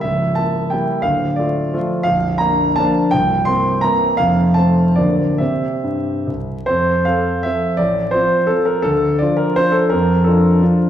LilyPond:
<<
  \new Staff \with { instrumentName = "Grand piano" } { \time 3/4 \key d \minor \tempo 4 = 169 e''4 a''4 g''4 | f''4 d''4. r8 | \key f \major f''4 bes''4 a''4 | g''4 c'''4 bes''4 |
f''4 a''4 d''4 | e''2 r4 | c''4 f''4 e''4 | d''4 c''4 a'8 bes'8 |
a'4 d''8 bes'8 c''8 a'8 | bes'4 a'4. r8 | }
  \new Staff \with { instrumentName = "Grand piano" } { \time 3/4 \key d \minor <cis,, cis,>4 <ais e'>4 <g ais e'>4 | <d,, d,>4 <a f'>4 <f a f'>4 | \key f \major <bes,,, bes,,>4 <bes d'>4 <f bes d'>4 | <c,, c,>4 <bes c'>4 <e bes c'>4 |
<f,, f,>4 <a c'>4 <d,, d, f bes d'>4 | <c c' g'>4 g,4 c,4 | f,4 <f c' a'>4 <f c' a'>4 | a,,4 <f c' f'>4 <f c' f'>4 |
d,4 <f d' f'>4 <f d' f'>4 | f,4 <f d' f'>4 <f d' f'>4 | }
>>